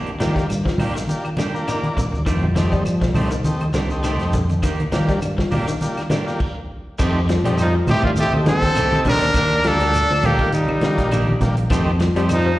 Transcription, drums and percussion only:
0.06 closed hi-hat soft
0.20 snare medium
0.20 closed hi-hat medium
0.20 high conga medium
0.20 shekere medium
0.36 kick medium
0.36 snare soft
0.36 closed hi-hat soft
0.36 shekere soft
0.49 closed hi-hat medium
0.49 claves medium
0.49 shekere medium
0.65 kick medium
0.65 snare medium
0.65 high conga medium
0.78 open hi-hat medium
0.78 high conga medium
0.78 low conga medium
0.78 claves medium
0.78 shekere soft
0.97 snare soft
0.97 shekere medium
1.07 closed hi-hat medium
1.07 high conga medium
1.07 shekere medium
1.25 closed hi-hat soft
1.25 claves medium
1.37 snare medium
1.37 closed hi-hat soft
1.37 high conga loud
1.37 shekere medium
1.55 shekere soft
1.67 closed hi-hat medium
1.67 claves medium
1.67 shekere medium
1.83 closed hi-hat soft
1.83 high conga medium
1.97 kick medium
1.97 closed hi-hat soft
1.97 low conga medium
1.97 shekere medium
2.14 high conga medium
2.14 shekere soft
2.26 kick medium
2.26 closed hi-hat medium
2.26 claves medium
2.26 shekere medium
2.42 high conga medium
2.42 low conga medium
2.56 snare medium
2.56 closed hi-hat soft
2.56 high conga medium
2.56 shekere medium
2.72 kick medium
2.72 shekere soft
2.85 closed hi-hat medium
2.85 claves medium
2.85 shekere medium
3.01 kick medium
3.01 snare medium
3.01 closed hi-hat soft
3.14 open hi-hat medium
3.14 high conga medium
3.14 low conga medium
3.14 claves medium
3.14 shekere soft
3.31 closed hi-hat soft
3.31 shekere medium
3.44 closed hi-hat medium
3.44 high conga medium
3.44 shekere medium
3.60 closed hi-hat soft
3.60 claves medium
3.74 snare medium
3.74 closed hi-hat soft
3.74 high conga medium
3.74 shekere medium
3.90 shekere soft
4.03 snare soft
4.03 closed hi-hat medium
4.03 claves medium
4.03 shekere medium
4.19 snare soft
4.19 closed hi-hat soft
4.33 kick medium
4.33 closed hi-hat medium
4.33 low conga medium
4.33 shekere medium
4.49 closed hi-hat soft
4.49 high conga medium
4.49 shekere soft
4.63 kick medium
4.63 closed hi-hat medium
4.63 claves medium
4.63 shekere medium
4.79 closed hi-hat soft
4.79 high conga medium
4.92 snare medium
4.92 closed hi-hat medium
4.92 high conga medium
4.92 shekere medium
5.09 kick medium
5.09 snare soft
5.09 closed hi-hat soft
5.09 shekere soft
5.22 closed hi-hat medium
5.22 claves medium
5.22 shekere medium
5.38 kick medium
5.38 snare medium
5.38 high conga medium
5.51 open hi-hat medium
5.51 high conga medium
5.51 low conga medium
5.51 claves medium
5.51 shekere soft
5.68 shekere medium
5.81 snare soft
5.81 closed hi-hat medium
5.81 high conga medium
5.81 shekere medium
5.97 snare soft
5.97 closed hi-hat soft
5.97 claves medium
6.10 snare medium
6.10 closed hi-hat medium
6.10 high conga loud
6.10 shekere medium
6.27 snare soft
6.27 shekere soft
6.40 kick medium
6.40 crash medium
6.99 kick medium
6.99 crash medium
6.99 claves medium
6.99 shekere medium
7.29 snare medium
7.29 closed hi-hat soft
7.29 shekere soft
7.44 snare soft
7.44 closed hi-hat medium
7.44 low conga medium
7.58 snare soft
7.58 closed hi-hat medium
7.58 claves medium
7.58 shekere medium
7.87 closed hi-hat soft
7.87 high conga medium
7.87 low conga medium
7.87 claves medium
7.87 shekere soft
8.03 kick medium
8.17 closed hi-hat medium
8.17 high conga medium
8.17 shekere medium
8.33 high conga medium
8.33 claves medium
8.46 snare medium
8.46 closed hi-hat soft
8.46 high conga loud
8.46 shekere soft
8.62 kick medium
8.62 closed hi-hat soft
8.75 closed hi-hat medium
8.75 claves medium
8.75 shekere medium
8.92 snare soft
8.92 high conga medium
9.05 kick medium
9.05 closed hi-hat medium
9.05 low conga medium
9.05 shekere soft
9.21 closed hi-hat soft
9.34 kick medium
9.34 closed hi-hat medium
9.34 claves medium
9.34 shekere loud
9.64 snare medium
9.64 closed hi-hat medium
9.64 shekere soft
9.80 closed hi-hat medium
9.93 closed hi-hat medium
9.93 claves medium
9.93 shekere medium
10.23 closed hi-hat medium
10.23 high conga medium
10.23 low conga medium
10.23 claves medium
10.23 shekere soft
10.39 kick medium
10.52 closed hi-hat medium
10.52 shekere medium
10.68 high conga medium
10.68 claves medium
10.81 snare medium
10.81 closed hi-hat medium
10.81 high conga medium
10.81 shekere soft
10.98 kick medium
10.98 snare soft
10.98 closed hi-hat medium
11.11 closed hi-hat medium
11.11 claves medium
11.11 shekere medium
11.27 high conga medium
11.41 kick medium
11.41 snare soft
11.41 closed hi-hat medium
11.41 low conga medium
11.41 shekere soft
11.57 closed hi-hat soft
11.70 kick medium
11.70 closed hi-hat medium
11.70 claves medium
11.70 shekere medium
12.00 snare medium
12.00 closed hi-hat medium
12.00 shekere soft
12.16 snare soft
12.16 closed hi-hat soft
12.29 closed hi-hat medium
12.29 claves medium
12.29 shekere medium

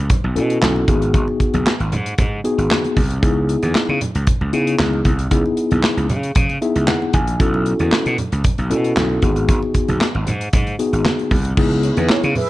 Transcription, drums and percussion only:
0.10 kick loud
0.10 closed hi-hat medium
0.10 low conga medium
0.36 closed hi-hat medium
0.50 closed hi-hat soft
0.62 snare loud
0.62 clap medium
0.62 muted conga soft
0.62 high conga medium
0.76 muted conga soft
0.88 kick loud
0.88 closed hi-hat medium
0.88 high conga medium
1.02 closed hi-hat medium
1.14 kick loud
1.14 closed hi-hat medium
1.14 muted conga soft
1.28 muted conga soft
1.40 kick medium
1.40 closed hi-hat medium
1.54 closed hi-hat soft
1.54 high conga medium
1.67 snare medium
1.67 clap medium
1.67 muted conga soft
1.80 closed hi-hat soft
1.92 closed hi-hat medium
1.92 low conga medium
2.06 closed hi-hat medium
2.18 kick loud
2.18 closed hi-hat medium
2.18 muted conga soft
2.18 low conga medium
2.45 closed hi-hat medium
2.59 closed hi-hat soft
2.70 snare loud
2.70 clap medium
2.70 muted conga soft
2.70 high conga medium
2.84 closed hi-hat soft
2.84 muted conga soft
2.97 kick loud
2.97 open hi-hat medium
2.97 high conga medium
3.11 closed hi-hat medium
3.23 kick loud
3.23 closed hi-hat medium
3.23 muted conga soft
3.49 closed hi-hat medium
3.62 closed hi-hat soft
3.62 high conga medium
3.75 snare medium
3.75 clap medium
3.75 muted conga soft
3.89 muted conga soft
4.01 closed hi-hat medium
4.01 low conga medium
4.15 closed hi-hat medium
4.27 kick loud
4.27 closed hi-hat medium
4.27 low conga medium
4.41 muted conga soft
4.53 closed hi-hat medium
4.67 closed hi-hat medium
4.79 snare loud
4.79 clap medium
4.79 high conga medium
4.93 muted conga soft
5.05 kick medium
5.05 closed hi-hat medium
5.05 high conga medium
5.19 closed hi-hat medium
5.31 kick loud
5.31 closed hi-hat medium
5.31 muted conga soft
5.46 muted conga soft
5.57 closed hi-hat medium
5.71 closed hi-hat soft
5.71 high conga medium
5.83 snare loud
5.83 clap medium
5.83 muted conga soft
5.98 closed hi-hat soft
5.98 muted conga soft
6.09 closed hi-hat medium
6.09 low conga medium
6.23 closed hi-hat soft
6.35 kick loud
6.35 closed hi-hat medium
6.35 low conga medium
6.49 closed hi-hat soft
6.49 muted conga soft
6.62 closed hi-hat medium
6.76 closed hi-hat soft
6.88 snare loud
6.88 clap medium
6.88 muted conga soft
6.88 high conga medium
7.02 muted conga soft
7.13 kick loud
7.13 closed hi-hat medium
7.13 high conga medium
7.27 closed hi-hat medium
7.40 kick loud
7.40 closed hi-hat medium
7.54 muted conga soft
7.66 closed hi-hat medium
7.79 closed hi-hat soft
7.79 high conga medium
7.92 snare medium
7.92 clap medium
8.06 closed hi-hat soft
8.18 closed hi-hat medium
8.18 low conga medium
8.32 closed hi-hat medium
8.44 kick loud
8.44 closed hi-hat medium
8.44 low conga medium
8.58 closed hi-hat soft
8.58 muted conga soft
8.71 closed hi-hat medium
8.84 closed hi-hat soft
8.97 snare loud
8.97 clap medium
8.97 high conga medium
9.22 kick medium
9.22 closed hi-hat medium
9.22 high conga medium
9.36 closed hi-hat medium
9.48 kick loud
9.48 closed hi-hat medium
9.48 muted conga soft
9.63 muted conga soft
9.74 kick medium
9.74 closed hi-hat medium
9.88 closed hi-hat soft
9.88 high conga medium
10.01 snare medium
10.01 clap medium
10.01 muted conga soft
10.15 muted conga soft
10.27 closed hi-hat medium
10.27 low conga medium
10.41 closed hi-hat medium
10.53 kick loud
10.53 closed hi-hat medium
10.53 muted conga soft
10.53 low conga medium
10.67 closed hi-hat soft
10.67 muted conga soft
10.79 closed hi-hat medium
10.93 closed hi-hat medium
11.04 snare loud
11.04 clap medium
11.04 muted conga soft
11.04 high conga medium
11.19 closed hi-hat soft
11.31 kick medium
11.31 open hi-hat medium
11.31 high conga medium
11.45 closed hi-hat medium
11.57 kick loud
11.57 crash loud
11.57 muted conga soft
11.71 closed hi-hat soft
11.71 muted conga soft
11.83 closed hi-hat medium
11.97 closed hi-hat soft
11.97 high conga medium
12.09 snare loud
12.09 clap medium
12.09 muted conga soft
12.23 closed hi-hat soft
12.23 muted conga soft
12.35 open hi-hat medium
12.35 low conga medium

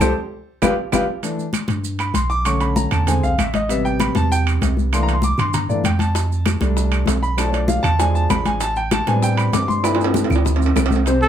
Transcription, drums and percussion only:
0.00 low bongo loud
0.00 high conga medium
0.00 high timbale loud
0.00 claves loud
0.00 maracas loud
0.62 low bongo loud
0.62 high conga loud
0.62 high timbale loud
0.62 claves loud
0.62 maracas medium
0.92 low bongo loud
0.92 high conga loud
0.92 high timbale loud
0.92 claves loud
0.92 maracas medium
1.23 high conga soft
1.23 high timbale medium
1.23 maracas medium
1.38 high conga soft
1.38 maracas soft
1.53 high conga medium
1.53 high timbale medium
1.53 claves medium
1.53 maracas medium
1.68 high conga medium
1.68 high timbale medium
1.68 maracas soft
1.83 high conga soft
1.83 maracas medium
1.99 high conga soft
1.99 high timbale medium
1.99 claves medium
1.99 maracas soft
2.14 high conga medium
2.14 high timbale medium
2.14 maracas medium
2.31 maracas soft
2.45 high conga soft
2.45 high timbale medium
2.45 claves medium
2.45 maracas medium
2.60 high conga soft
2.60 high timbale medium
2.60 maracas soft
2.76 high conga loud
2.76 maracas medium
2.91 high conga soft
2.91 low conga medium
2.91 high timbale medium
2.91 claves medium
2.91 maracas soft
3.07 high conga soft
3.07 low conga medium
3.07 high timbale medium
3.07 maracas medium
3.23 high conga soft
3.23 maracas soft
3.38 high conga medium
3.38 high timbale loud
3.38 claves medium
3.38 maracas medium
3.54 high conga medium
3.54 high timbale medium
3.54 maracas soft
3.69 high conga soft
3.69 high timbale medium
3.69 maracas medium
3.85 high conga soft
3.85 maracas soft
4.00 high conga loud
4.00 high timbale medium
4.00 claves medium
4.00 maracas medium
4.15 high conga loud
4.15 high timbale medium
4.15 maracas soft
4.31 high conga soft
4.31 maracas medium
4.46 high conga soft
4.46 high timbale medium
4.46 claves medium
4.46 maracas soft
4.61 high conga medium
4.61 high timbale medium
4.61 low timbale medium
4.61 maracas medium
4.77 high conga medium
4.77 maracas soft
4.92 high conga soft
4.92 high timbale medium
4.92 claves medium
4.92 maracas medium
5.07 high conga soft
5.07 high timbale medium
5.07 maracas soft
5.22 high conga loud
5.22 maracas medium
5.38 high conga soft
5.38 low conga medium
5.38 high timbale medium
5.38 claves medium
5.38 maracas soft
5.54 high conga soft
5.54 low conga medium
5.54 high timbale medium
5.54 maracas medium
5.68 high conga soft
5.68 maracas soft
5.84 high conga medium
5.84 high timbale loud
5.84 claves medium
5.84 maracas medium
5.99 high conga medium
5.99 high timbale medium
5.99 maracas soft
6.15 high bongo medium
6.15 high conga soft
6.15 high timbale medium
6.15 maracas medium
6.30 high conga soft
6.30 maracas soft
6.46 high bongo medium
6.46 high conga loud
6.46 high timbale medium
6.46 claves medium
6.46 maracas medium
6.61 high conga loud
6.61 high timbale medium
6.61 maracas soft
6.76 high bongo medium
6.76 high conga soft
6.76 maracas medium
6.92 high conga soft
6.92 high timbale medium
6.92 claves medium
6.92 maracas soft
7.06 high bongo medium
7.06 low bongo medium
7.06 high conga medium
7.06 high timbale medium
7.06 low timbale medium
7.06 maracas medium
7.23 maracas soft
7.38 high bongo medium
7.38 high conga soft
7.38 high timbale medium
7.38 claves medium
7.38 maracas medium
7.52 high bongo soft
7.52 high conga soft
7.52 high timbale medium
7.52 maracas soft
7.68 high bongo medium
7.68 high conga loud
7.68 maracas medium
7.83 high bongo soft
7.83 high conga soft
7.83 low conga medium
7.83 high timbale medium
7.83 claves medium
7.83 maracas soft
7.99 high bongo medium
7.99 high conga soft
7.99 high timbale medium
7.99 maracas medium
8.14 high conga soft
8.14 maracas soft
8.30 high bongo medium
8.30 low bongo medium
8.30 high conga medium
8.30 high timbale medium
8.30 claves medium
8.30 maracas medium
8.45 high bongo soft
8.45 high conga medium
8.45 high timbale medium
8.45 maracas soft
8.61 high bongo medium
8.61 high conga soft
8.61 high timbale medium
8.61 maracas medium
8.76 high conga soft
8.76 maracas soft
8.91 high bongo medium
8.91 high conga loud
8.91 high timbale loud
8.91 claves medium
8.91 maracas medium
9.07 high conga loud
9.07 high timbale medium
9.07 maracas soft
9.22 high bongo medium
9.22 high conga soft
9.22 maracas medium
9.37 high conga soft
9.37 high timbale medium
9.37 claves medium
9.37 maracas soft
9.53 high bongo medium
9.53 low bongo medium
9.53 high conga medium
9.53 high timbale medium
9.53 low timbale medium
9.53 maracas medium
9.69 high conga medium
9.69 maracas soft
9.84 high bongo medium
9.84 high conga soft
9.84 high timbale medium
9.84 claves medium
9.84 maracas medium
9.95 high timbale medium
10.00 high bongo soft
10.00 high conga soft
10.00 maracas soft
10.04 low timbale loud
10.14 high bongo medium
10.14 high conga loud
10.14 high timbale medium
10.14 maracas medium
10.24 low timbale loud
10.30 high bongo soft
10.30 high conga soft
10.30 low conga medium
10.30 claves medium
10.30 maracas soft
10.36 high timbale medium
10.45 high bongo medium
10.45 high conga soft
10.45 low conga medium
10.45 maracas medium
10.56 high conga soft
10.56 low timbale medium
10.62 maracas soft
10.66 low timbale medium
10.76 high bongo medium
10.76 low bongo medium
10.76 high conga medium
10.76 low timbale loud
10.76 claves medium
10.76 maracas medium
10.86 low timbale loud
10.90 high bongo soft
10.90 high conga medium
10.90 maracas soft
10.96 low timbale medium
11.06 high bongo medium
11.06 high conga soft
11.06 high timbale medium
11.06 maracas medium
11.22 high conga soft
11.22 maracas soft

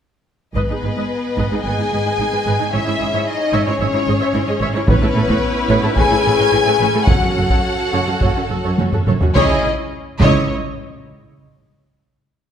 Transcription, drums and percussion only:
0.56 taiko medium
1.38 taiko soft
4.88 taiko medium
5.28 taiko medium
5.97 taiko medium
7.07 taiko medium
7.50 taiko medium
8.21 taiko medium
8.78 taiko high medium
8.92 taiko low-mid medium
9.07 taiko low-mid medium
9.21 taiko low medium
9.35 taiko loud
10.20 taiko medium

